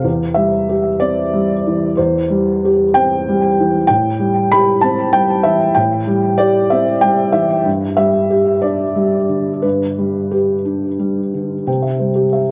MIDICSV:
0, 0, Header, 1, 2, 480
1, 0, Start_track
1, 0, Key_signature, 0, "major"
1, 0, Tempo, 643777
1, 35, Time_signature, 6, 3, 24, 8
1, 2436, Tempo, 630252
1, 6276, Tempo, 668896
1, 9292, End_track
2, 0, Start_track
2, 0, Title_t, "Felt piano"
2, 0, Program_c, 0, 0
2, 0, Control_c, 0, 64, 127
2, 31, Note_on_c, 0, 40, 50
2, 48, Control_c, 0, 64, 0
2, 156, Control_c, 0, 64, 127
2, 257, Note_on_c, 0, 76, 73
2, 274, Note_on_c, 0, 55, 39
2, 516, Note_on_c, 0, 67, 42
2, 653, Note_off_c, 0, 55, 0
2, 739, Note_off_c, 0, 76, 0
2, 745, Note_on_c, 0, 74, 73
2, 757, Note_on_c, 0, 60, 47
2, 893, Note_off_c, 0, 67, 0
2, 995, Note_on_c, 0, 55, 45
2, 1132, Note_off_c, 0, 60, 0
2, 1242, Note_on_c, 0, 52, 48
2, 1372, Note_off_c, 0, 55, 0
2, 1431, Note_off_c, 0, 40, 0
2, 1462, Note_off_c, 0, 74, 0
2, 1469, Note_on_c, 0, 72, 66
2, 1477, Control_c, 0, 64, 0
2, 1482, Note_on_c, 0, 40, 49
2, 1611, Control_c, 0, 64, 127
2, 1619, Note_off_c, 0, 52, 0
2, 1716, Note_on_c, 0, 55, 45
2, 1974, Note_on_c, 0, 67, 47
2, 2104, Note_off_c, 0, 55, 0
2, 2192, Note_on_c, 0, 79, 98
2, 2199, Note_off_c, 0, 72, 0
2, 2205, Note_on_c, 0, 60, 54
2, 2351, Note_off_c, 0, 67, 0
2, 2449, Note_on_c, 0, 55, 53
2, 2584, Note_off_c, 0, 60, 0
2, 2689, Note_on_c, 0, 52, 47
2, 2822, Note_off_c, 0, 55, 0
2, 2887, Note_off_c, 0, 79, 0
2, 2888, Note_off_c, 0, 40, 0
2, 2898, Note_on_c, 0, 79, 93
2, 2917, Note_off_c, 0, 52, 0
2, 2917, Note_on_c, 0, 45, 58
2, 2922, Control_c, 0, 64, 0
2, 3056, Control_c, 0, 64, 127
2, 3142, Note_on_c, 0, 55, 48
2, 3376, Note_off_c, 0, 79, 0
2, 3387, Note_on_c, 0, 83, 95
2, 3398, Note_on_c, 0, 67, 52
2, 3523, Note_off_c, 0, 55, 0
2, 3615, Note_on_c, 0, 81, 78
2, 3623, Note_off_c, 0, 83, 0
2, 3633, Note_on_c, 0, 60, 59
2, 3772, Note_off_c, 0, 67, 0
2, 3854, Note_on_c, 0, 79, 100
2, 3858, Note_off_c, 0, 81, 0
2, 3862, Note_on_c, 0, 55, 51
2, 4012, Note_off_c, 0, 60, 0
2, 4086, Note_on_c, 0, 76, 88
2, 4099, Note_off_c, 0, 79, 0
2, 4099, Note_on_c, 0, 52, 51
2, 4247, Note_off_c, 0, 55, 0
2, 4317, Note_off_c, 0, 45, 0
2, 4323, Note_on_c, 0, 79, 88
2, 4335, Note_off_c, 0, 76, 0
2, 4336, Note_on_c, 0, 45, 56
2, 4356, Control_c, 0, 64, 0
2, 4487, Note_off_c, 0, 52, 0
2, 4502, Control_c, 0, 64, 127
2, 4570, Note_on_c, 0, 55, 49
2, 4803, Note_on_c, 0, 74, 88
2, 4814, Note_off_c, 0, 79, 0
2, 4816, Note_on_c, 0, 67, 49
2, 4961, Note_off_c, 0, 55, 0
2, 5050, Note_on_c, 0, 76, 76
2, 5053, Note_off_c, 0, 74, 0
2, 5066, Note_on_c, 0, 60, 53
2, 5203, Note_off_c, 0, 67, 0
2, 5287, Note_on_c, 0, 79, 99
2, 5296, Note_off_c, 0, 76, 0
2, 5303, Note_on_c, 0, 55, 54
2, 5448, Note_off_c, 0, 60, 0
2, 5527, Note_on_c, 0, 76, 86
2, 5535, Note_off_c, 0, 79, 0
2, 5536, Note_on_c, 0, 52, 51
2, 5689, Note_off_c, 0, 55, 0
2, 5752, Note_off_c, 0, 45, 0
2, 5772, Note_on_c, 0, 43, 58
2, 5778, Note_off_c, 0, 76, 0
2, 5782, Note_off_c, 0, 52, 0
2, 5799, Control_c, 0, 64, 0
2, 5908, Control_c, 0, 64, 127
2, 6014, Note_on_c, 0, 76, 83
2, 6022, Note_on_c, 0, 55, 49
2, 6270, Note_on_c, 0, 67, 49
2, 6412, Note_off_c, 0, 55, 0
2, 6497, Note_on_c, 0, 74, 69
2, 6502, Note_off_c, 0, 76, 0
2, 6512, Note_on_c, 0, 62, 46
2, 6648, Note_off_c, 0, 67, 0
2, 6743, Note_on_c, 0, 55, 42
2, 6890, Note_off_c, 0, 62, 0
2, 6979, Note_on_c, 0, 50, 39
2, 7128, Note_off_c, 0, 55, 0
2, 7191, Note_off_c, 0, 43, 0
2, 7217, Note_on_c, 0, 71, 61
2, 7219, Note_off_c, 0, 74, 0
2, 7227, Note_on_c, 0, 43, 42
2, 7239, Control_c, 0, 64, 0
2, 7349, Control_c, 0, 64, 127
2, 7370, Note_off_c, 0, 50, 0
2, 7477, Note_on_c, 0, 55, 38
2, 7714, Note_on_c, 0, 67, 42
2, 7867, Note_off_c, 0, 55, 0
2, 7956, Note_on_c, 0, 62, 38
2, 8106, Note_off_c, 0, 67, 0
2, 8201, Note_on_c, 0, 55, 41
2, 8349, Note_off_c, 0, 62, 0
2, 8445, Note_off_c, 0, 71, 0
2, 8451, Note_on_c, 0, 50, 37
2, 8592, Note_off_c, 0, 55, 0
2, 8661, Note_off_c, 0, 43, 0
2, 8689, Note_on_c, 0, 48, 37
2, 8690, Note_off_c, 0, 50, 0
2, 8692, Note_on_c, 0, 79, 33
2, 8704, Control_c, 0, 64, 0
2, 8798, Note_on_c, 0, 76, 33
2, 8820, Control_c, 0, 64, 127
2, 8878, Note_off_c, 0, 79, 0
2, 8919, Note_on_c, 0, 72, 31
2, 8923, Note_on_c, 0, 55, 30
2, 8990, Note_off_c, 0, 76, 0
2, 9033, Note_on_c, 0, 67, 34
2, 9109, Note_off_c, 0, 72, 0
2, 9159, Note_on_c, 0, 76, 37
2, 9225, Note_off_c, 0, 67, 0
2, 9292, Note_off_c, 0, 48, 0
2, 9292, Note_off_c, 0, 55, 0
2, 9292, Note_off_c, 0, 76, 0
2, 9292, End_track
0, 0, End_of_file